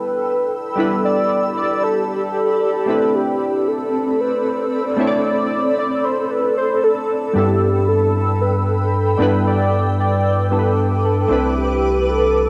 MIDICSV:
0, 0, Header, 1, 5, 480
1, 0, Start_track
1, 0, Tempo, 526316
1, 945, Time_signature, 4, 2, 24, 8
1, 11395, End_track
2, 0, Start_track
2, 0, Title_t, "Ambient pad"
2, 0, Program_c, 0, 92
2, 0, Note_on_c, 0, 69, 78
2, 0, Note_on_c, 0, 79, 72
2, 0, Note_on_c, 0, 83, 69
2, 0, Note_on_c, 0, 88, 90
2, 688, Note_off_c, 0, 69, 0
2, 688, Note_off_c, 0, 79, 0
2, 705, Note_on_c, 0, 67, 79
2, 706, Note_on_c, 0, 74, 78
2, 2589, Note_off_c, 0, 83, 0
2, 2589, Note_off_c, 0, 88, 0
2, 2606, Note_off_c, 0, 67, 0
2, 2606, Note_off_c, 0, 74, 0
2, 2625, Note_on_c, 0, 69, 73
2, 2625, Note_on_c, 0, 74, 75
2, 2625, Note_on_c, 0, 83, 75
2, 2625, Note_on_c, 0, 88, 90
2, 2626, Note_on_c, 0, 60, 87
2, 6669, Note_off_c, 0, 60, 0
2, 6669, Note_off_c, 0, 74, 0
2, 6669, Note_off_c, 0, 83, 0
2, 6705, Note_on_c, 0, 79, 70
2, 6705, Note_on_c, 0, 83, 73
2, 8349, Note_off_c, 0, 69, 0
2, 8369, Note_off_c, 0, 83, 0
2, 8385, Note_on_c, 0, 71, 83
2, 8385, Note_on_c, 0, 86, 77
2, 10269, Note_off_c, 0, 79, 0
2, 10303, Note_on_c, 0, 81, 76
2, 11395, Note_off_c, 0, 71, 0
2, 11395, Note_off_c, 0, 81, 0
2, 11395, Note_off_c, 0, 86, 0
2, 11395, Note_off_c, 0, 88, 0
2, 11395, End_track
3, 0, Start_track
3, 0, Title_t, "Soft synth lead"
3, 0, Program_c, 1, 80
3, 0, Note_on_c, 1, 71, 106
3, 710, Note_off_c, 1, 71, 0
3, 953, Note_on_c, 1, 74, 122
3, 1396, Note_off_c, 1, 74, 0
3, 1432, Note_on_c, 1, 74, 115
3, 1673, Note_on_c, 1, 69, 101
3, 1686, Note_off_c, 1, 74, 0
3, 2389, Note_off_c, 1, 69, 0
3, 2393, Note_on_c, 1, 69, 98
3, 2874, Note_on_c, 1, 67, 100
3, 2887, Note_off_c, 1, 69, 0
3, 3355, Note_on_c, 1, 69, 101
3, 3368, Note_off_c, 1, 67, 0
3, 3836, Note_on_c, 1, 71, 95
3, 3849, Note_off_c, 1, 69, 0
3, 4550, Note_off_c, 1, 71, 0
3, 4796, Note_on_c, 1, 74, 121
3, 5237, Note_off_c, 1, 74, 0
3, 5275, Note_on_c, 1, 74, 108
3, 5516, Note_on_c, 1, 72, 98
3, 5530, Note_off_c, 1, 74, 0
3, 5754, Note_on_c, 1, 71, 102
3, 5767, Note_off_c, 1, 72, 0
3, 5989, Note_off_c, 1, 71, 0
3, 5995, Note_on_c, 1, 72, 97
3, 6235, Note_on_c, 1, 69, 92
3, 6249, Note_off_c, 1, 72, 0
3, 6714, Note_on_c, 1, 67, 104
3, 6728, Note_off_c, 1, 69, 0
3, 7187, Note_off_c, 1, 67, 0
3, 7192, Note_on_c, 1, 69, 103
3, 7672, Note_on_c, 1, 71, 91
3, 7686, Note_off_c, 1, 69, 0
3, 8389, Note_off_c, 1, 71, 0
3, 8632, Note_on_c, 1, 74, 118
3, 9075, Note_off_c, 1, 74, 0
3, 9114, Note_on_c, 1, 74, 117
3, 9594, Note_on_c, 1, 69, 106
3, 9608, Note_off_c, 1, 74, 0
3, 10070, Note_off_c, 1, 69, 0
3, 10075, Note_on_c, 1, 69, 94
3, 10555, Note_on_c, 1, 67, 106
3, 10569, Note_off_c, 1, 69, 0
3, 11034, Note_on_c, 1, 69, 107
3, 11048, Note_off_c, 1, 67, 0
3, 11395, Note_off_c, 1, 69, 0
3, 11395, End_track
4, 0, Start_track
4, 0, Title_t, "Synth keys"
4, 0, Program_c, 2, 88
4, 0, Control_c, 2, 64, 127
4, 0, Note_on_c, 2, 55, 63
4, 0, Note_on_c, 2, 59, 59
4, 0, Note_on_c, 2, 62, 54
4, 0, Note_on_c, 2, 64, 56
4, 0, Note_on_c, 2, 69, 70
4, 663, Note_off_c, 2, 55, 0
4, 668, Note_off_c, 2, 59, 0
4, 673, Note_off_c, 2, 62, 0
4, 679, Note_off_c, 2, 64, 0
4, 684, Note_off_c, 2, 69, 0
4, 689, Note_on_c, 2, 55, 74
4, 699, Note_on_c, 2, 59, 70
4, 709, Note_on_c, 2, 62, 67
4, 716, Control_c, 2, 64, 0
4, 719, Note_on_c, 2, 64, 67
4, 729, Note_on_c, 2, 71, 82
4, 905, Control_c, 2, 64, 127
4, 2581, Note_off_c, 2, 55, 0
4, 2586, Note_off_c, 2, 59, 0
4, 2591, Note_off_c, 2, 62, 0
4, 2596, Note_off_c, 2, 64, 0
4, 2601, Note_off_c, 2, 71, 0
4, 2608, Note_on_c, 2, 57, 64
4, 2618, Note_on_c, 2, 60, 58
4, 2629, Note_on_c, 2, 62, 58
4, 2637, Control_c, 2, 64, 0
4, 2639, Note_on_c, 2, 64, 59
4, 2649, Note_on_c, 2, 71, 69
4, 2777, Control_c, 2, 64, 127
4, 4500, Note_off_c, 2, 57, 0
4, 4505, Note_off_c, 2, 60, 0
4, 4511, Note_off_c, 2, 62, 0
4, 4515, Note_off_c, 2, 64, 0
4, 4520, Note_off_c, 2, 71, 0
4, 4529, Note_on_c, 2, 57, 75
4, 4539, Note_on_c, 2, 60, 69
4, 4549, Note_on_c, 2, 62, 68
4, 4559, Note_on_c, 2, 64, 70
4, 4569, Note_on_c, 2, 73, 66
4, 4621, Note_off_c, 2, 73, 0
4, 4627, Note_on_c, 2, 74, 84
4, 6420, Note_off_c, 2, 57, 0
4, 6425, Note_off_c, 2, 60, 0
4, 6430, Note_off_c, 2, 62, 0
4, 6435, Note_off_c, 2, 64, 0
4, 6470, Note_off_c, 2, 74, 0
4, 6688, Note_on_c, 2, 55, 62
4, 6698, Note_on_c, 2, 59, 56
4, 6708, Note_on_c, 2, 62, 57
4, 6717, Control_c, 2, 64, 0
4, 6718, Note_on_c, 2, 64, 59
4, 6728, Note_on_c, 2, 69, 68
4, 6901, Control_c, 2, 64, 127
4, 8343, Note_off_c, 2, 55, 0
4, 8348, Note_off_c, 2, 59, 0
4, 8353, Note_off_c, 2, 62, 0
4, 8358, Note_off_c, 2, 64, 0
4, 8363, Note_off_c, 2, 69, 0
4, 8368, Note_on_c, 2, 55, 74
4, 8378, Note_on_c, 2, 59, 69
4, 8389, Note_on_c, 2, 62, 72
4, 8397, Control_c, 2, 64, 0
4, 8399, Note_on_c, 2, 64, 69
4, 8409, Note_on_c, 2, 71, 82
4, 8558, Control_c, 2, 64, 127
4, 9553, Note_off_c, 2, 55, 0
4, 9558, Note_off_c, 2, 59, 0
4, 9563, Note_off_c, 2, 62, 0
4, 9568, Note_off_c, 2, 64, 0
4, 9573, Note_off_c, 2, 71, 0
4, 9579, Note_on_c, 2, 55, 46
4, 9584, Note_on_c, 2, 59, 42
4, 9589, Note_on_c, 2, 62, 44
4, 9594, Note_on_c, 2, 64, 43
4, 9599, Note_on_c, 2, 69, 41
4, 9656, Note_off_c, 2, 69, 0
4, 9657, Note_on_c, 2, 71, 52
4, 10289, Note_on_c, 2, 57, 66
4, 10298, Note_off_c, 2, 62, 0
4, 10299, Note_on_c, 2, 60, 56
4, 10302, Note_off_c, 2, 55, 0
4, 10305, Note_off_c, 2, 59, 0
4, 10309, Note_on_c, 2, 62, 59
4, 10310, Note_off_c, 2, 64, 0
4, 10316, Control_c, 2, 64, 0
4, 10319, Note_off_c, 2, 71, 0
4, 10319, Note_on_c, 2, 64, 60
4, 10329, Note_on_c, 2, 71, 68
4, 10473, Control_c, 2, 64, 127
4, 11395, Note_off_c, 2, 57, 0
4, 11395, Note_off_c, 2, 60, 0
4, 11395, Note_off_c, 2, 62, 0
4, 11395, Note_off_c, 2, 64, 0
4, 11395, Note_off_c, 2, 71, 0
4, 11395, End_track
5, 0, Start_track
5, 0, Title_t, "Sub bass"
5, 0, Program_c, 3, 38
5, 6705, Note_on_c, 3, 43, 83
5, 8351, Note_off_c, 3, 43, 0
5, 8384, Note_on_c, 3, 43, 85
5, 10268, Note_off_c, 3, 43, 0
5, 10304, Note_on_c, 3, 36, 82
5, 11395, Note_off_c, 3, 36, 0
5, 11395, End_track
0, 0, End_of_file